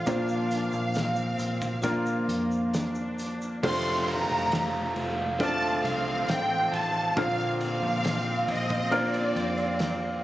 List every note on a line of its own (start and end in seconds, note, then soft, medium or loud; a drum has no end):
0.00 3.47 C5 medium
0.00 3.47 D5 medium
0.00 2.75 F5 medium
0.06 0.69 A#1 loud
0.06 0.51 A#2 medium
0.06 1.35 A#2 medium
0.06 0.51 D3 medium
0.06 1.35 F3 medium
0.06 0.51 F3 medium
0.06 3.47 A#3 medium
0.06 1.75 A#3 medium
0.06 0.51 A#3 medium
0.06 0.50 C4 medium
0.06 1.75 D4 medium
0.06 0.91 D4 medium
0.06 3.47 F4 medium
0.06 1.75 F4 medium
0.06 0.49 F4 medium
0.06 1.75 C5 medium
0.06 kick loud
0.06 closed hi-hat medium
0.06 shaker medium
0.28 shaker soft
0.50 1.82 F3 soft
0.50 1.84 A#3 soft
0.50 1.87 C4 soft
0.50 1.89 F4 soft
0.50 closed hi-hat medium
0.50 shaker soft
0.73 1.35 A#1 medium
0.73 shaker soft
0.94 1.80 C4 medium
0.94 snare medium
0.94 closed hi-hat medium
0.94 shaker medium
1.16 shaker soft
1.39 2.24 A#1 medium
1.39 closed hi-hat medium
1.39 shaker soft
1.62 kick medium
1.62 shaker soft
1.82 3.64 F3 medium
1.82 3.54 A#3 medium
1.82 2.74 A#3 medium
1.82 3.64 A#3 medium
1.82 3.55 D4 medium
1.82 3.55 F4 medium
1.82 3.55 A#4 medium
1.82 kick medium
1.82 closed hi-hat medium
1.82 shaker medium
1.87 3.64 C4 medium
1.87 3.65 F4 medium
2.06 shaker soft
2.28 3.59 F2 medium
2.28 closed hi-hat medium
2.51 shaker soft
2.74 3.64 D4 medium
2.74 snare loud
2.74 closed hi-hat medium
2.74 shaker medium
2.95 shaker soft
3.19 closed hi-hat medium
3.19 shaker soft
3.42 shaker soft
3.63 4.26 F1 loud
3.63 4.07 F2 medium
3.63 4.92 C3 medium
3.63 4.08 D3 medium
3.63 4.08 F3 medium
3.63 5.31 A3 medium
3.63 5.36 A3 loud
3.63 7.14 A3 medium
3.63 4.08 A3 medium
3.63 5.31 C4 medium
3.63 4.07 C4 medium
3.63 5.31 D4 medium
3.63 5.32 F4 medium
3.63 10.24 F4 medium
3.63 4.06 F4 medium
3.63 5.32 C5 medium
3.63 10.24 C5 medium
3.63 10.24 F5 medium
3.63 3.99 C6 loud
3.63 kick loud
3.63 crash loud
3.63 downlifter medium
4.03 4.09 C6 medium
4.07 5.38 F3 soft
4.07 5.40 A3 soft
4.07 5.43 C4 medium
4.07 5.45 F4 medium
4.07 4.97 A#5 loud
4.07 ride medium
4.29 4.92 F1 medium
4.52 snare loud
4.52 ride medium
4.96 5.80 F1 medium
4.96 ride medium
5.39 7.17 F3 medium
5.39 7.08 A3 medium
5.39 7.18 A3 medium
5.39 7.08 C4 medium
5.39 7.13 C4 loud
5.39 7.08 D4 medium
5.39 7.08 F4 medium
5.39 7.09 D5 medium
5.39 5.82 A5 loud
5.39 kick loud
5.39 ride medium
5.43 7.18 C4 medium
5.43 7.19 F4 medium
5.62 ride soft
5.84 6.25 C2 medium
5.84 6.30 F5 loud
5.84 ride medium
6.28 6.70 A1 loud
6.28 6.74 G5 loud
6.28 snare loud
6.28 ride medium
6.73 7.14 A1 loud
6.73 7.18 A5 loud
6.73 ride medium
7.17 7.79 A#1 loud
7.17 7.61 A#2 medium
7.17 8.45 A#2 medium
7.17 8.84 D3 medium
7.17 8.45 F3 medium
7.17 7.61 F3 medium
7.17 8.83 A#3 medium
7.17 10.24 A#3 medium
7.17 10.24 C4 loud
7.17 8.83 C4 medium
7.17 7.61 C4 medium
7.17 7.62 D4 loud
7.17 8.84 F4 medium
7.17 7.59 F4 medium
7.17 8.84 C5 medium
7.17 7.59 F5 loud
7.17 kick loud
7.17 ride medium
7.61 8.93 C4 medium
7.61 8.97 F4 medium
7.61 8.45 F5 loud
7.61 ride medium
7.82 8.44 A#1 loud
8.04 snare loud
8.04 ride medium
8.48 9.32 A#1 loud
8.48 8.93 D#5 loud
8.48 ride medium
8.70 kick loud
8.91 10.24 F3 medium
8.91 10.24 A#3 medium
8.91 10.24 C4 medium
8.91 10.24 D4 medium
8.91 10.24 F4 medium
8.91 10.24 A#4 medium
8.91 10.24 D5 loud
8.91 ride medium
8.96 10.24 D4 medium
8.96 10.24 F4 medium
9.14 ride soft
9.36 10.24 F2 loud
9.36 ride medium
9.58 ride soft
9.79 snare loud
9.79 ride medium